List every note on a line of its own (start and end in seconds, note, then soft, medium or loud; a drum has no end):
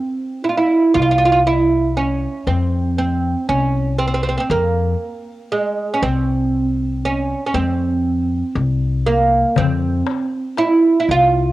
0.00 0.47 C4 medium
0.44 0.49 E4 medium
0.49 0.57 F4 medium
0.57 0.94 E4 medium
0.94 2.25 C2 medium
0.94 1.01 F4 medium
1.02 1.09 F4 medium
1.11 1.17 F4 medium
1.18 1.24 F4 medium
1.25 1.31 F4 medium
1.32 1.39 F4 medium
1.47 1.97 E4 medium
1.97 2.48 C#4 medium
2.47 3.33 F2 medium
2.47 2.97 C4 medium
2.98 3.45 C4 medium
3.49 4.35 C2 medium
3.49 3.98 C#4 medium
3.99 4.06 C4 medium
4.08 4.13 C4 medium
4.14 4.21 C4 medium
4.23 4.28 C4 medium
4.29 4.36 C4 medium
4.38 4.40 C4 medium
4.38 4.48 C4 medium
4.50 4.93 F2 medium
4.50 5.51 A#3 medium
5.52 5.96 G#3 medium
5.94 6.01 C#4 medium
6.02 7.32 C2 medium
6.02 7.00 C4 medium
7.05 7.45 C#4 medium
7.46 7.54 C#4 medium
7.54 8.41 F2 medium
7.54 9.06 C4 medium
8.55 9.42 C2 medium
9.06 9.57 A#3 medium
9.56 10.01 F2 medium
9.56 10.62 C4 medium
9.56 darbuka dum loud
10.06 darbuka tek medium
10.57 10.99 E4 medium
10.57 darbuka tek medium
11.00 11.08 E4 medium
11.08 11.52 C2 medium
11.08 11.52 F4 medium
11.08 darbuka ka soft